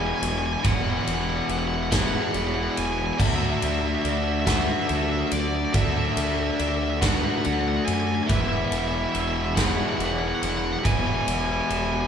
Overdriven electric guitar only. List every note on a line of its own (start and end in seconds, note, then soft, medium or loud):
0.00 0.63 E3 medium
0.00 0.62 G#3 medium
0.00 0.62 B3 medium
0.00 0.65 E4 medium
0.63 1.92 E3 loud
0.63 1.89 G#3 loud
0.63 1.89 B3 loud
0.63 1.90 E4 medium
1.90 3.18 E3 medium
1.90 3.17 G#3 medium
1.90 3.17 B3 medium
1.90 3.20 E4 medium
3.18 4.48 D3 medium
3.18 4.47 A3 loud
3.18 4.46 D4 loud
3.18 4.45 F#4 loud
4.46 5.72 D3 medium
4.46 5.72 A3 medium
4.46 5.71 D4 medium
4.46 5.75 F#4 medium
5.73 6.99 D3 medium
5.73 6.99 A3 medium
5.73 6.99 D4 loud
5.73 7.01 F#4 medium
7.01 8.27 D3 medium
7.01 8.27 A3 medium
7.01 8.27 D4 medium
7.01 8.30 F#4 medium
8.28 9.57 E3 medium
8.28 9.57 G#3 loud
8.28 9.56 B3 loud
8.28 9.55 E4 loud
9.56 10.83 E3 medium
9.56 10.84 G#3 medium
9.56 10.85 B3 medium
9.56 10.85 E4 medium
10.83 12.07 E3 medium
10.83 12.07 G#3 medium
10.83 12.07 B3 loud
10.83 12.07 E4 loud